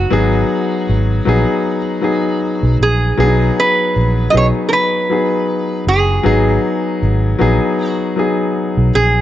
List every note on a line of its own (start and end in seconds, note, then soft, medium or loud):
0.00 0.10 F#3 medium
0.00 0.11 B3 medium
0.00 0.12 D#4 medium
0.00 2.77 F#4 medium
0.00 0.13 G#4 medium
0.00 0.14 B4 medium
0.10 0.43 G#1 loud
0.10 0.85 F#3 loud
0.10 0.86 B3 medium
0.10 0.86 D#4 medium
0.10 0.86 G#4 loud
0.89 1.20 G#1 medium
1.25 1.44 A#1 medium
1.25 1.76 F#3 medium
1.25 1.77 B3 medium
1.25 1.77 D#4 medium
1.25 1.78 G#4 medium
2.01 2.77 F#3 medium
2.01 2.77 B3 medium
2.01 2.78 D#4 medium
2.01 2.78 G#4 medium
2.63 2.77 B1 medium
2.81 3.11 A#1 medium
2.81 3.60 G#4 medium
3.17 3.49 B1 loud
3.17 3.92 F#3 medium
3.17 3.93 B3 medium
3.17 3.26 D4 medium
3.17 3.94 G#4 loud
3.26 3.97 D#4 medium
3.60 4.31 B4 medium
3.96 4.27 A#1 medium
4.30 4.83 F#3 medium
4.30 4.84 B3 medium
4.30 4.84 D#4 medium
4.30 4.35 D#5 medium
4.35 4.51 B1 medium
4.35 4.85 G#4 medium
4.35 4.45 C#5 loud
4.69 4.72 A#4 medium
4.73 5.84 B4 medium
5.10 5.85 F#3 medium
5.10 5.85 B3 medium
5.10 5.85 D#4 medium
5.10 5.86 G#4 medium
5.87 6.18 F#1 medium
5.87 7.88 G#4 medium
6.23 6.57 G#1 loud
6.23 6.99 F#3 medium
6.23 7.00 B3 medium
6.23 7.00 D#4 medium
6.23 7.00 G#4 loud
7.03 7.34 G#1 medium
7.39 7.58 A#1 medium
7.39 7.90 F#3 medium
7.39 7.91 B3 medium
7.39 7.91 D#4 medium
7.39 7.92 G#4 medium
7.88 8.94 F#4 medium
8.16 8.92 F#3 medium
8.16 8.92 B3 medium
8.16 8.93 D#4 medium
8.16 8.93 G#4 medium
8.77 8.92 B1 medium
8.95 9.21 A#1 medium
8.95 9.21 G#4 medium